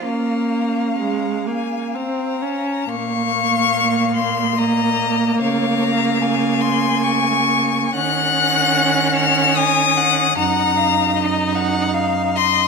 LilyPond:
<<
  \new Staff \with { instrumentName = "Violin" } { \time 3/4 \key bes \minor \tempo 4 = 72 bes''4. aes''8 bes''4 | des'''4. c'''8 bes''4 | f''4. c'''8 des'''4 | ges'''4. f'''8 ees'''4 |
bes''4. r4 c'''8 | }
  \new Staff \with { instrumentName = "Violin" } { \time 3/4 \key bes \minor f''2~ f''8. r16 | f''2 ees''4 | des''8 bes''8 aes''2 | ges''2 aes''8 ges''8 |
ges''8 f''8 ees''8 ges''8 f''8 ees''8 | }
  \new Staff \with { instrumentName = "Viola" } { \time 3/4 \key bes \minor bes4 aes8 bes8 c'8 des'8 | bes2.~ | bes2. | des'2. |
ees'2. | }
  \new Staff \with { instrumentName = "Cello" } { \clef bass \time 3/4 \key bes \minor des'2 r4 | bes,2. | des2. | ees2. |
ges,2. | }
>>